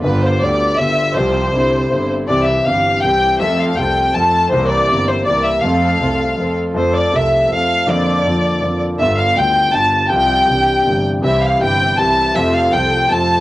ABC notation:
X:1
M:3/4
L:1/8
Q:1/4=161
K:F
V:1 name="Violin section"
=B c d2 e2 | c4- c z | d e f2 g2 | e f g2 a2 |
c d2 c d e | f4- f z | c d e2 f2 | d4- d z |
e f g2 a2 | g4- g z | e f g2 a2 | e f g2 a2 |]
V:2 name="String section"
[=B,FG]2 [B,FG]2 [B,FG]2 | [CFG]2 [CDE]2 [CDE]2 | [CEG]2 [E,CG]2 [CEG]2 | [CFA]2 [CFA]2 [CFA]2 |
[CEB]2 [CEB]2 [CEB]2 | [CFA]2 [CFA]2 [CFA]2 | z6 | z6 |
z6 | z6 | [CEG]2 [CEG]2 [CEG]2 | [CFA]2 [CFA]2 [CFA]2 |]
V:3 name="Grand piano" clef=bass
[G,,,G,,D,G,=B,F]2 [D,,D,G,B,F]2 [G,,,G,,D,G,B,F]2 | [C,,C,F,G,CG]2 [C,,C,D,G,CE]2 [G,,,G,,D,G,CE]2 | [C,,C,E,G,CG]2 [G,,,G,,E,G,CG]2 [C,,C,E,G,CG]2 | [F,,F,A,CA]2 [C,,C,F,A,CA]2 [F,,F,A,CA]2 |
[C,,C,E,B,CG]2 [G,,,G,,E,B,CG]2 [C,,C,E,B,CG]2 | [F,,F,A,CA]2 [C,,C,F,A,CA]2 [F,,F,A,CA]2 | [F,,F,A,CA]2 [C,,C,F,A,CA]2 [F,,F,A,CA]2 | [F,,D,F,B,F]2 [F,,D,F,B,F]2 [F,,D,F,B,F]2 |
[G,,,G,,D,G,=B,F]2 [D,,D,G,B,F]2 [G,,,G,,D,G,B,F]2 | [C,,C,F,G,F]2 [C,,C,E,G,D]2 [G,,,G,,C,E,G,D]2 | [C,,C,E,G,E]2 [G,,,G,,C,E,G,E]2 [C,,C,E,G,E]2 | [F,,C,F,A,F]2 [C,,C,F,A,]2 [F,,C,F,A,F]2 |]
V:4 name="Double bass" clef=bass
G,,,2 D,,2 G,,,2 | C,,2 C,,2 G,,,2 | C,,2 G,,,2 C,,2 | F,,2 C,,2 F,,2 |
C,,2 G,,,2 C,,2 | F,,2 C,,2 F,,2 | F,,2 C,,2 F,,2 | F,,2 F,,2 F,,2 |
G,,,2 D,,2 G,,,2 | C,,2 C,,2 G,,,2 | C,,2 G,,,2 C,,2 | F,,2 C,,2 F,,2 |]